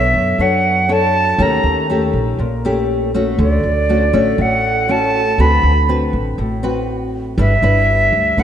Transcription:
Already playing: upright bass B1, nylon-string guitar B3 D4 A4 C#5, flute E5
0.14 upright bass F#2
0.38 upright bass F#2, nylon-string guitar F#3 D4 A4 C#5, flute F#5
0.89 nylon-string guitar D4 A4 C#5, flute A5
1.38 upright bass D#2, nylon-string guitar D#3 A3 C#4 G4, flute A#5
1.63 upright bass D#2
1.90 nylon-string guitar A3 C#4 G4
2.13 upright bass A#1
2.38 upright bass A#1, nylon-string guitar A#2
2.65 nylon-string guitar A3 C#4 G4
3.14 nylon-string guitar A3 C#4 F#4
3.38 upright bass D2, nylon-string guitar D3, flute D5
3.63 upright bass D2
3.89 nylon-string guitar A3 C#4 F#4
4.13 upright bass A1, nylon-string guitar A3 C#4 F#4
4.38 upright bass A1, nylon-string guitar A2, flute F#5
4.88 nylon-string guitar A3 C#4 F#4, flute A5
5.38 upright bass D2, nylon-string guitar D3 C4 F#4 B4, flute B5
5.63 upright bass D2
5.89 nylon-string guitar C4 F#4 B4
6.13 upright bass A1
6.38 upright bass A1, nylon-string guitar A2
6.63 nylon-string guitar C4 F#4 B4
7.38 upright bass G1, nylon-string guitar G3 D4 E4 B4, flute E5
7.62 upright bass G1, nylon-string guitar D4 E4 B4
8.12 upright bass D2
8.37 upright bass D2, nylon-string guitar D3 D4 E4 B4, flute F#5

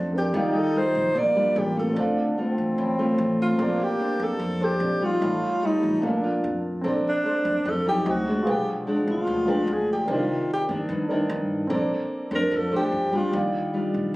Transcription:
Already playing: upright bass F2, nylon-string guitar F3 D4 A4 C5, grand piano C4 A4 D5
0.12 grand piano C4 A4 A#4 D5
0.18 alto saxophone G4
0.33 upright bass D#2, nylon-string guitar D#3 G3 F4, trombone D#4, grand piano G4 D5 F5
0.58 alto saxophone A4
0.74 nylon-string guitar G3 F4, alto saxophone C5
0.95 upright bass A#1
1.15 upright bass A#1, nylon-string guitar A#2, trombone A#3, alto saxophone D5
1.35 nylon-string guitar G3 D4 F4, grand piano G4 D5 F5
1.56 upright bass A1, alto saxophone G4
1.76 nylon-string guitar A3 C4 F4, alto saxophone A4
1.94 upright bass D2, nylon-string guitar D3, grand piano D4 A4 C5, trombone D4
1.99 grand piano F5
2.37 nylon-string guitar A3 C4 F4, trombone C4
2.58 upright bass A1
2.78 upright bass A1, nylon-string guitar A2
2.98 nylon-string guitar A3 C4 F4
3.18 upright bass A1
3.42 alto saxophone F4
3.56 upright bass A#1, trombone A#3, nylon-string guitar A#3 D4 A4 C5, grand piano C4 A4
3.62 grand piano D5
3.83 alto saxophone G4
3.99 nylon-string guitar D4 A4 C5
4.20 upright bass F2, alto saxophone A4
4.40 upright bass F2, nylon-string guitar F3
4.60 nylon-string guitar D4 A4 C5, alto saxophone G4
4.79 upright bass A#1, grand piano C4 A4 D5
5.01 nylon-string guitar G3 D#4 F4, alto saxophone F4
5.18 upright bass A1, nylon-string guitar A2, trombone A3, grand piano D#4 G4
5.22 grand piano A4 F5
5.62 nylon-string guitar G3 D#4 F4, alto saxophone D#4
5.83 upright bass A1
5.99 upright bass A#1, nylon-string guitar A#2 A3 D4 F4, grand piano A#3 D4 A4
6.04 trombone A#3, alto saxophone D4, grand piano F5
6.23 nylon-string guitar D4 F4
6.44 upright bass F2
6.81 upright bass A#1, nylon-string guitar A#3 D4 A4 C5, grand piano C4 A4
6.87 grand piano D5
7.09 alto saxophone D4
7.25 nylon-string guitar D4 A4 C5
7.45 upright bass F2
7.65 upright bass F2, nylon-string guitar F3
7.70 alto saxophone A4
7.86 nylon-string guitar F#3 C4 D#4, alto saxophone G4
8.05 upright bass D2, grand piano F#4 C5 D#5
8.11 alto saxophone F#4
8.27 nylon-string guitar F3 G#3 D4
8.43 nylon-string guitar B2, grand piano F4 G#4 B4
8.47 upright bass B1, alto saxophone G4, grand piano G5
8.87 nylon-string guitar F3 G#3 D4
9.07 upright bass D2, alto saxophone F4
9.27 upright bass D2, nylon-string guitar B2
9.46 nylon-string guitar F3 G#3 D4, grand piano F4 G#4 B4 G5
9.67 upright bass D2
9.73 alto saxophone G#4
9.93 alto saxophone G4
10.06 upright bass C2, nylon-string guitar C3 D#3 A#3 D4, grand piano A#4 C5 D5
10.12 grand piano D#4, alto saxophone F4
10.53 alto saxophone G4
10.69 upright bass G2, nylon-string guitar D#3 A#3 D4
10.89 upright bass G2, nylon-string guitar G2
11.08 nylon-string guitar D#3 A#3 D4, grand piano D#4 A#4 C5 D5
11.30 upright bass G2
11.67 upright bass A#1, nylon-string guitar A#3 D4 A4 C5, grand piano C4 A4
11.73 grand piano D5
12.31 upright bass F2, nylon-string guitar D4 A4 C5
12.35 alto saxophone A#4
12.51 upright bass F2, nylon-string guitar F3
12.57 alto saxophone A4
12.71 upright bass A2, nylon-string guitar D4 A4 C5
12.76 alto saxophone G4
12.92 upright bass G2
13.12 upright bass F2, nylon-string guitar G3 D4 F4
13.16 alto saxophone F4
13.31 upright bass D#2, nylon-string guitar D#3, grand piano G4 D5 F5
13.74 nylon-string guitar G3 D4 F4
13.94 upright bass A#1

